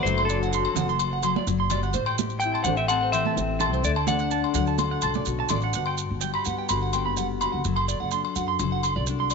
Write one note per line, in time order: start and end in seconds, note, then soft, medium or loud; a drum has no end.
0.03 0.63 F#1 medium
0.03 1.22 F#3 medium
0.03 0.27 A3 medium
0.03 0.75 D4 medium
0.03 0.29 F#4 medium
0.03 0.25 C5 medium
0.03 maracas medium
0.08 2.19 A4 medium
0.18 0.27 C6 medium
0.18 low agogo medium
0.25 1.20 F#3 medium
0.25 1.18 A4 medium
0.29 0.52 F#4 medium
0.29 0.39 D5 medium
0.29 maracas medium
0.43 0.51 F#5 medium
0.43 maracas soft
0.53 1.92 F#4 medium
0.53 0.63 C6 medium
0.53 maracas medium
0.65 low agogo medium
0.75 1.34 F#1 medium
0.75 0.86 F#5 medium
0.75 muted steel-string acoustic guitar stroke medium
0.75 low conga medium
0.75 maracas loud
0.89 0.97 C6 medium
0.89 maracas soft
0.99 low agogo medium
0.99 maracas medium
1.13 1.21 F#5 medium
1.23 1.47 F#3 medium
1.23 1.33 C6 medium
1.23 low agogo medium
1.23 maracas medium
1.36 1.45 D5 medium
1.36 high conga medium
1.47 1.83 F#1 medium
1.47 1.71 F#3 medium
1.47 maracas medium
1.60 1.68 C6 medium
1.70 1.95 G3 medium
1.70 1.80 D5 medium
1.70 low conga medium
1.70 low agogo medium
1.70 maracas medium
1.83 1.92 G1 medium
1.83 1.92 F#5 medium
1.83 maracas soft
1.93 2.53 A1 medium
1.93 3.82 A2 medium
1.93 2.03 C5 medium
1.93 maracas medium
2.06 2.15 G5 medium
2.06 low agogo medium
2.18 3.59 G4 medium
2.18 high conga medium
2.18 maracas medium
2.30 maracas soft
2.40 3.82 C4 medium
2.40 2.63 G5 medium
2.40 2.51 G5 medium
2.40 maracas medium
2.45 2.66 E4 medium
2.54 2.63 A5 medium
2.54 low agogo medium
2.64 3.24 A1 medium
2.64 3.81 A3 medium
2.64 2.78 D4 medium
2.64 2.75 C5 medium
2.64 2.76 F#5 medium
2.64 low conga medium
2.64 maracas medium
2.77 2.89 C4 medium
2.77 2.88 E5 medium
2.77 2.87 G5 medium
2.77 maracas soft
2.88 3.12 C4 medium
2.88 3.11 F#5 loud
2.88 2.99 A5 medium
2.88 low agogo medium
2.88 maracas medium
3.03 3.11 C5 medium
3.12 3.82 E3 medium
3.12 3.81 C4 medium
3.12 3.80 E5 medium
3.12 3.23 G5 medium
3.12 low agogo medium
3.12 maracas medium
3.25 3.34 A5 medium
3.25 high conga medium
3.37 3.71 A1 medium
3.37 muted clean electric guitar stroke medium
3.37 muted steel-string acoustic guitar stroke medium
3.37 maracas medium
3.60 3.84 G4 medium
3.60 3.70 A5 medium
3.60 low conga medium
3.60 low agogo medium
3.60 maracas medium
3.71 3.82 C2 medium
3.71 3.82 C5 medium
3.71 maracas soft
3.83 4.42 D2 medium
3.83 5.71 D3 medium
3.83 3.96 A3 medium
3.83 3.91 D5 medium
3.83 maracas medium
3.96 4.05 A5 medium
3.96 low agogo medium
4.07 5.00 D4 medium
4.07 5.51 A4 medium
4.07 4.17 D5 medium
4.07 4.99 F#5 medium
4.07 high conga medium
4.07 low conga medium
4.07 maracas medium
4.19 4.29 F#5 medium
4.19 maracas soft
4.31 5.71 D4 soft
4.31 4.41 A5 medium
4.31 maracas medium
4.44 low agogo medium
4.54 4.94 D2 medium
4.54 5.71 F#3 medium
4.54 4.64 F#5 medium
4.54 low conga medium
4.54 maracas medium
4.67 4.76 A5 medium
4.67 maracas soft
4.78 high conga medium
4.78 low agogo medium
4.78 maracas medium
4.91 5.00 F#5 medium
5.02 5.24 C2 medium
5.02 5.71 A2 medium
5.02 5.12 A5 medium
5.02 low agogo medium
5.02 maracas medium
5.14 5.24 D5 medium
5.14 high conga medium
5.14 maracas soft
5.25 5.48 B1 medium
5.25 5.72 F#4 medium
5.25 maracas medium
5.40 5.48 A5 medium
5.49 5.72 A1 medium
5.49 5.60 D5 medium
5.49 low conga medium
5.49 low agogo medium
5.49 maracas medium
5.61 5.72 F#5 medium
5.61 maracas soft
5.73 6.04 G1 medium
5.73 7.66 G2 medium
5.73 6.70 F#4 medium
5.73 5.84 F#5 medium
5.73 maracas medium
5.86 5.95 G5 medium
5.86 low agogo medium
5.97 maracas medium
6.11 6.30 G1 medium
6.21 7.17 G3 medium
6.21 6.31 G5 medium
6.21 maracas medium
6.34 6.43 B5 medium
6.34 low agogo medium
6.45 6.66 G2 medium
6.45 6.93 B3 soft
6.45 6.55 F#5 medium
6.45 maracas medium
6.58 6.67 G5 medium
6.69 7.06 G1 medium
6.69 7.62 D3 medium
6.69 7.42 F#4 medium
6.69 6.78 B5 medium
6.69 low agogo medium
6.69 maracas medium
6.82 6.91 F#5 medium
6.93 7.62 B3 medium
6.93 7.03 G5 medium
6.93 low agogo medium
6.93 maracas medium
7.06 7.45 F#1 medium
7.06 7.14 B5 medium
7.17 7.63 G3 medium
7.17 7.26 F#5 medium
7.17 maracas medium
7.41 7.63 F#4 medium
7.41 7.50 B5 medium
7.41 low agogo medium
7.41 maracas medium
7.52 7.63 F#1 medium
7.52 7.61 F#5 medium
7.64 7.95 F#1 medium
7.64 8.59 F#3 medium
7.64 8.61 A4 medium
7.64 maracas medium
7.76 7.85 C6 medium
7.76 low agogo medium
7.88 7.97 D5 medium
7.88 maracas medium
8.00 8.20 F#1 medium
8.00 8.09 F#5 medium
8.11 9.08 D4 medium
8.11 8.21 C6 medium
8.11 maracas medium
8.25 low agogo soft
8.36 8.56 F#2 medium
8.36 8.83 F#4 medium
8.36 8.45 F#5 medium
8.36 maracas medium
8.48 8.57 C6 medium
8.59 8.97 F#1 medium
8.59 9.34 F#3 medium
8.59 9.32 A4 medium
8.59 low agogo medium
8.59 maracas medium
8.72 8.81 F#5 medium
8.83 9.34 F#4 medium
8.83 8.93 C6 medium
8.83 low agogo medium
8.83 maracas medium
8.96 9.34 C2 medium
8.96 9.04 D5 medium
9.07 9.34 D4 medium
9.07 maracas medium
9.20 9.28 C6 medium
9.30 9.34 D5 medium
9.30 low agogo medium
9.30 maracas medium